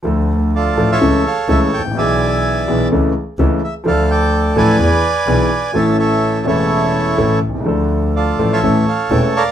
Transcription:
<<
  \new Staff \with { instrumentName = "Bandoneon" } { \time 4/4 \key d \minor \tempo 4 = 126 << { r4 d''8. e''8. f''8 e''8 g''8 | gis''4. r2 e''8 | f''8 g''4 gis''2~ gis''8 | a''8 e''4 cis''2 r8 |
r4 d''8. e''8. f''8 g''8 f''8 | } \\ { r4 <f' a'>8. <a' cis''>2 r16 | <d'' e''>2 r2 | <a' d''>8 d''4 <b' d''>2~ <b' d''>8 | <cis'' e''>8 <a' cis''>4 <e' a'>2 r8 |
r4 <f' a'>8. <a' cis''>4.~ <a' cis''>16 <bes' d''>8 | } >> }
  \new Staff \with { instrumentName = "Grand piano" } { \clef bass \time 4/4 \key d \minor <d, d f a d' a'>4. <a,, a, f a d' a'>8 <cis, cis e a cis' a'>8 r8 <cis, cis e a cis' a'>8 r32 gis,,32 a,,32 bes,,32 | <b,, b, e b d' gis'>4. <b,, b, e b d' gis'>8 <cis, cis e a cis' a'>8 r8 <cis, cis e a cis' a'>8 r8 | <d, d f a d' a'>4. <a,, a, f a d' a'>8 <e, e b d' gis'>8 r8 <b,, b, e b d' gis'>8 r8 | <a,, a, e a cis' a'>4. <e,, e, e a cis' a'>4. <a,, a, e a cis' a'>8 r32 b,,32 c,32 cis,32 |
<d, d f a d' a'>4. <a,, a, f a d' a'>8 <a,, a, e a cis' a'>8 r8 <e,, e, e a cis' a'>8 r8 | }
  \new Staff \with { instrumentName = "Double bass" } { \clef bass \time 4/4 \key d \minor d,4. a,,8 cis,8 r8 cis,8 a,,8 | b,,4. b,,8 cis,8 r8 cis,8 r8 | d,4. a,,8 e,8 r8 b,,8 r8 | a,,4. e,,4. a,,8 c,8 |
d,4. a,,8 a,,8 r8 e,,8 r8 | }
>>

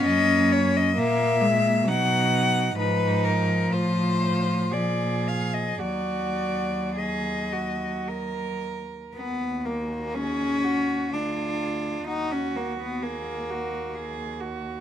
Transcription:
<<
  \new Staff \with { instrumentName = "Cello" } { \time 3/4 \key ees \minor \tempo 4 = 63 ees''8 des''16 ees''16 fes''4 fis''4 | ces''8 bes'8 c''4 d''8 f''16 ees''16 | d''4 ees''4. r8 | ges'2 aes'4 |
ges'2. | }
  \new Staff \with { instrumentName = "Cello" } { \time 3/4 \key ees \minor bes4 bes4 dis'4 | ees'4 f'8 f'8 aes'4 | ges'4 aes'8 ges'8 bes'4 | r4 aes'8 ges'8 f'4 |
ges'4 aes'8 ges'8 aes'8 ges'8 | }
  \new Staff \with { instrumentName = "Cello" } { \time 3/4 \key ees \minor des'4 bes8 aes8 fis4 | f2 f4 | ges2~ ges8 r8 | ces'8 bes8 des'4 d'4 |
ees'16 des'16 bes16 ces'16 bes4. r8 | }
  \new Staff \with { instrumentName = "Cello" } { \clef bass \time 3/4 \key ees \minor ges,4 bes,4 b,4 | aes,4 a,4 bes,4 | ees,2. | ees,2 d,4 |
ees,2. | }
>>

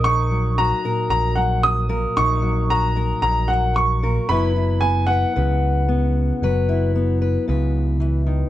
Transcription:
<<
  \new Staff \with { instrumentName = "Upright piano" } { \time 4/4 \key dis \phrygian \tempo 4 = 113 cis'''4 ais''4 ais''8 fis''8 dis'''4 | cis'''4 ais''4 ais''8 fis''8 cis'''4 | b''4 gis''8 fis''2~ fis''8~ | fis''2. r4 | }
  \new Staff \with { instrumentName = "Steel-string acoustic guitar" } { \time 4/4 \key dis \phrygian << { <dis' ais'>4 fis'8 ais'2 ais'8 | dis'4 fis'8 ais'2 ais'8 | <b e' b'>8 e'4 b'8 b'2 | b'8 e'4 b'8 b'2 | } \\ { ais,8 fis4 ais,4 fis4 ais,8~ | ais,8 fis4 ais,4 fis4 ais,8 | fis4 b4 cis4 b4 | fis4 b4 cis4 e8 dis8 | } >> }
  \new Staff \with { instrumentName = "Picked electric bass" } { \clef bass \time 4/4 \key dis \phrygian ais,,4. r8 ais,,2 | ais,,2 ais,,2 | fis,,2 cis,2 | fis,,2 cis,2 | }
>>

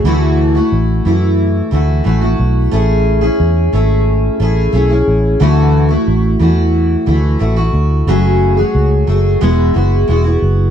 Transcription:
<<
  \new Staff \with { instrumentName = "Steel-string acoustic guitar" } { \time 4/4 \key d \lydian \tempo 4 = 90 <d e a e' fis'>8. <a e' fis'>8. <e a e' fis'>4 <e a e' fis'>8 <e a e' fis'>16 <a e' fis'>8. | <a cis' e' gis'>8. <cis' e' gis'>8. <a cis' e' gis'>4 <a cis' e' gis'>8 <a cis' e' gis'>16 <cis' e' gis'>8. | <d e a e' fis'>8. <a e' fis'>8. <e a e' fis'>4 <e a e' fis'>8 <e a e' fis'>16 <a e' fis'>8. | <fis, cis fis a fis' gis'>8. <fis a fis' gis'>8. <fis a fis' gis'>8 <e gis b e' fis'>8 <gis b e' fis'>8 <gis b e' fis'>16 <b e' fis'>8. | }
  \new Staff \with { instrumentName = "Fingered electric bass" } { \clef bass \time 4/4 \key d \lydian d,4 a,,8 fis,4 d,8 a,,8 b,,8 | a,,4 e,8 gis,,4 a,,8 b,,8 a,,8 | d,4 a,,8 e,4 d,8 a,,8 d,8 | fis,,4 cis,8 fis,,8 e,,8 fis,,8 e,,8 fis,,8 | }
>>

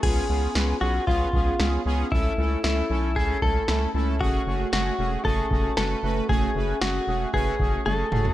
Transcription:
<<
  \new Staff \with { instrumentName = "Clean electric guitar" } { \time 4/4 \key fis \minor \tempo 4 = 115 gis'4. fis'8 eis'4. r8 | e'4 e'4 gis'8 a'4 r8 | fis'4 fis'4 a'4 a'4 | gis'4 fis'4 gis'4 a'4 | }
  \new Staff \with { instrumentName = "Analog polysynth" } { \time 4/4 \key fis \minor <b cis' eis' gis'>8 <b cis' eis' gis'>8 <b cis' eis' b'>8 <b cis' eis' gis'>8 <b cis' eis' gis'>8 <b cis' eis' gis'>8 <b cis' eis' gis'>8 <b cis' eis' gis'>8 | <a cis' e' a'>8 <a cis' e' a'>8 <a cis' e' a'>8 <a cis' e' a'>8 <a cis' e' a'>8 <a cis' e' a'>8 <a cis' e' a'>8 <a cis' e' a'>8 | <a cis' fis' gis'>8 <a cis' fis' gis'>8 <a cis' fis' gis'>8 <a cis' fis' gis'>8 <a cis' fis' gis'>8 <a cis' fis' gis'>8 <a cis' fis' b'>8 <a cis' fis' b'>8 | <a cis' fis' gis'>8 <a cis' fis' b'>8 <a cis' fis' gis'>8 <a cis' fis' gis'>8 <a cis' fis' b'>8 <a cis' fis' gis'>8 <a cis' fis' gis'>8 <a cis' fis' gis'>8 | }
  \new Staff \with { instrumentName = "Analog synth bass" } { \clef bass \time 4/4 \key fis \minor cis,8 cis,8 cis,8 b,,8 cis,8 cis,8 cis,8 cis,8 | cis,8 cis,8 cis,8 b,,8 cis,8 cis,8 cis,8 cis,8 | fis,,8 fis,,8 fis,,8 e,,8 fis,,8 fis,,8 fis,,8 fis,,8 | fis,,8 fis,,8 fis,,8 e,,8 fis,,8 fis,,8 fis,,8 fis,,8 | }
  \new DrumStaff \with { instrumentName = "Drums" } \drummode { \time 4/4 <cymc bd>4 sn4 bd8 bd8 sn4 | bd4 sn4 bd8 bd8 sn4 | bd4 sn4 bd8 bd8 sn4 | bd4 sn4 bd8 bd8 tommh8 toml16 tomfh16 | }
>>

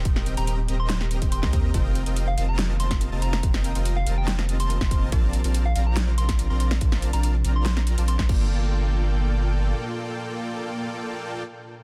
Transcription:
<<
  \new Staff \with { instrumentName = "Soft synth lead" } { \time 4/4 \key g \minor \tempo 4 = 142 r8. bes''16 bes''16 r8 c'''16 c'''16 r8. c'''16 c'''16 r8 | r4 r16 f''16 f''16 bes''16 r8 c'''16 r8. bes''8~ | bes''4 r16 f''16 r16 g''16 r8. c'''4 r16 | r4 r16 f''16 f''16 bes''16 r8 c'''16 r8 c'''16 c'''16 r16 |
r8. bes''16 bes''16 r8 c'''16 r4 c'''16 c'''16 r8 | r1 | r1 | }
  \new Staff \with { instrumentName = "Supersaw synth" } { \time 4/4 \key g \minor <c' g' bes' ees'' g''>8. <c' g' bes' ees'' g''>8 r16 <c' g' bes' ees'' bes''>4~ <c' g' bes' ees'' bes''>16 <c' g' bes' ees'' g''>8 <c' g' bes' ees'' bes''>8. | <c' f' bes' ees'' g''>8. <c' f' bes' ees'' g''>8 r16 <c' f' bes' ees'' a''>4.~ <c' f' bes' ees'' a''>16 <c' f' bes' ees'' a''>8. | <c' f' bes' ees'' g''>8. <c' f' bes' ees'' g''>8 r16 <c' f' bes' ees'' a''>4.~ <c' f' bes' ees'' a''>16 <c' f' bes' ees'' a''>8. | <c' f' bes' d'' a''>8. <c' f' bes' d'' a''>8 r16 <c' f' bes' d'' bes''>4.~ <c' f' bes' d'' bes''>16 <c' f' bes' d'' bes''>8. |
<c' f' bes' d'' a''>8. <c' f' bes' d'' a''>8 r16 <c' f' bes' d'' bes''>4~ <c' f' bes' d'' bes''>16 <c' f' bes' d'' a''>8 <c' f' bes' d'' bes''>16 <bes f' a' d'' g''>8~ | <bes f' a' d'' g''>1~ | <bes f' a' d'' g''>1 | }
  \new Staff \with { instrumentName = "Ambient pad" } { \time 4/4 \key g \minor << { <ees g'>1~ | <ees g'>1~ | <ees g'>1 | <c d'>1~ |
<c d'>2.~ <c d'>8 <bes, f' a'>8~ | <bes, f' a'>1~ | <bes, f' a'>1 | } \\ { c'1 | bes1~ | bes1 | r1 |
r1 | r1 | r1 | } >> }
  \new Staff \with { instrumentName = "Sub bass" } { \clef bass \time 4/4 \key g \minor ees,,8. ees,,8. ees,,4~ ees,,16 ees,,8 ees,8. | f,,8. f,,8. f,,4.~ f,,16 f,,8. | f,,8. f,,8. f,,4.~ f,,16 f,,8. | bes,,8. bes,,8. bes,,4.~ bes,,16 bes,,8. |
bes,,8. bes,,8. bes,,4~ bes,,16 bes,,8 bes,,16 g,,8~ | g,,2. r4 | r1 | }
  \new DrumStaff \with { instrumentName = "Drums" } \drummode { \time 4/4 <hh bd>16 sn16 hh16 hh16 hh8 hh8 <hh sn>16 sn16 hh16 <hh bd>16 hh16 <bd sn>16 <hh bd>8 | <hh bd>8 hh16 hh16 hh8 hh8 <hh sn>8 hh16 <hh bd sn>16 hh8 hh16 sn16 | <hh bd>16 sn16 hh16 hh16 hh8 hh8 <hh sn>16 sn16 hh16 hh16 hh16 <bd sn>16 <hh bd>8 | <hh bd>8 hh16 hh16 hh8 hh8 <hh sn>8 hh16 <hh bd sn>16 hh8 hh16 sn16 |
<hh bd>16 sn16 hh16 hh16 hh8 hh8 <hh sn>16 sn16 hh16 hh16 hh16 <bd sn>16 <cymc bd>8 | r4 r4 r4 r4 | r4 r4 r4 r4 | }
>>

